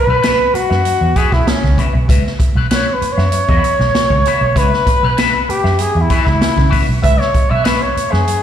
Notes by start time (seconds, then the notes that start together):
Already playing: B4
0.07 B1 F#4 B4 E5
0.22 F#4 B4 E5, snare, closed hi-hat
0.54 F#4, muted clean electric guitar stroke, muted fingered electric bass stroke, closed hi-hat
0.69 F#2 F#4 B4 E5, snare
0.85 closed hi-hat
1.01 E2, muted clean electric guitar stroke
1.16 F#4 G#4 B4 E5, kick, closed hi-hat
1.32 B1 E4, kick, snare
1.47 C#4, muted clean electric guitar stroke, muted fingered electric bass stroke, snare, closed hi-hat
1.63 C#2, muted clean electric guitar stroke, kick, snare
1.78 F#4 B4 E5, kick, closed hi-hat
1.94 B1, muted clean electric guitar stroke
2.08 C#2 F#4 B4 E5, kick, closed hi-hat
2.27 snare
2.39 muted clean electric guitar stroke, kick, closed hi-hat
2.55 B1 F#4 B4 E5
2.71 F#4 B4 C#5 E5, snare, closed hi-hat
2.94 B4
3.02 muted fingered electric bass stroke, muted clean electric guitar stroke, closed hi-hat
3.13 C#5
3.17 F#2 F#4 B4 E5, snare
3.32 muted clean electric guitar stroke, closed hi-hat
3.48 E2 F#4 B4 E5, kick
3.64 muted clean electric guitar stroke, closed hi-hat
3.79 B1, muted clean electric guitar stroke, snare
3.94 muted fingered electric bass stroke, snare, closed hi-hat
4.10 C#2, muted clean electric guitar stroke, kick
4.25 F#4 B4 E5, closed hi-hat
4.41 B1, muted clean electric guitar stroke
4.55 C#2 F#4 B4 E5, kick, closed hi-hat
4.73 snare
4.86 muted clean electric guitar stroke, kick, closed hi-hat
5.03 B1 F#4 B4 E5
5.17 F#4 B4 E5, snare, closed hi-hat
5.48 G4, muted clean electric guitar stroke, muted fingered electric bass stroke, closed hi-hat
5.64 F#2 F#4 B4 E5, snare
5.79 G#4, closed hi-hat
5.95 E2, muted clean electric guitar stroke
6.01 E4
6.09 F#4 B4 E5, kick, closed hi-hat
6.22 E4, muted clean electric guitar stroke, snare
6.27 C#2, kick
6.40 muted clean electric guitar stroke, snare, closed hi-hat
6.56 C#3, muted clean electric guitar stroke, kick, snare
6.70 F#4 B4 E5, kick, open hi-hat
6.88 B1, muted clean electric guitar stroke
7.02 C#2 F#4 B4 E5, kick, closed hi-hat
7.20 C#5, snare
7.33 muted clean electric guitar stroke, kick, closed hi-hat
7.49 B1 F#4 B4 E5
7.64 F#4 B4 E5, snare, closed hi-hat
7.81 C#5
7.95 muted clean electric guitar stroke, muted fingered electric bass stroke, closed hi-hat
8.10 F#2 F#4 G#4 B4 E5, snare
8.28 closed hi-hat